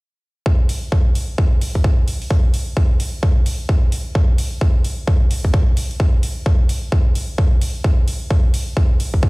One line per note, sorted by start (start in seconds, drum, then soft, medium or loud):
0.46 kick loud
0.69 open hi-hat medium
0.92 kick loud
1.15 open hi-hat medium
1.38 kick loud
1.61 open hi-hat medium
1.75 kick medium
1.84 kick loud
2.08 open hi-hat medium
2.22 open hi-hat medium
2.31 kick loud
2.54 open hi-hat loud
2.77 kick loud
3.00 open hi-hat loud
3.23 kick loud
3.46 open hi-hat loud
3.69 kick loud
3.92 open hi-hat loud
4.15 kick loud
4.38 open hi-hat loud
4.61 kick loud
4.84 open hi-hat loud
5.08 kick loud
5.31 open hi-hat loud
5.45 kick medium
5.54 kick loud
5.77 open hi-hat loud
5.91 open hi-hat medium
6.00 kick loud
6.23 open hi-hat loud
6.46 kick loud
6.69 open hi-hat loud
6.92 kick loud
7.15 open hi-hat loud
7.38 kick loud
7.61 open hi-hat loud
7.84 kick loud
8.08 open hi-hat loud
8.31 kick loud
8.54 open hi-hat loud
8.77 kick loud
9.00 open hi-hat loud
9.14 kick medium
9.23 kick loud